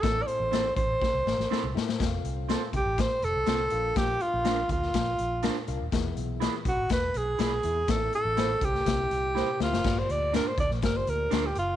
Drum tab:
CC |----------------|----------------|----------------|----------------|
HH |x-x-x-x---------|x-x-x-x-x-x-x-x-|x-x-x-x-x-x-x-x-|x-x-x-x-x-x-x-x-|
SD |o---o---o-ooo-oo|o---o---o---o---|o---o--oo---o---|o---o---o---o---|
BD |o-----o-o-------|o-----o-o-------|o-----o-o-------|o-----o-o-------|

CC |----------------|x---------------|
HH |x-x-x-x-x-x-----|--x-x-x-x-x-x-x-|
SD |o---o--oo---o-oo|o---o--oo---o---|
BD |o-----o-o-------|o-----o-o-------|